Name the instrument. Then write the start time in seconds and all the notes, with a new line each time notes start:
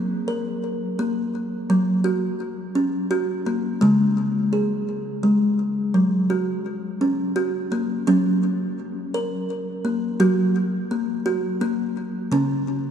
kalimba
Already playing: F#3 A#3
0.28 A#4
0.99 A#3
1.70 F#3
2.04 F#4
2.75 C#4
3.11 F#4
3.46 A#3
3.81 C#3 G#3
4.53 G#4
5.23 G#3
5.94 F#3
6.30 F#4
7.01 C#4
7.36 F#4
7.72 A#3
8.07 F#3 C#4
9.14 A#4
9.85 A#3
10.20 F#3 F#4
10.91 A#3
11.26 F#4
11.61 A#3
12.32 C#3 C#4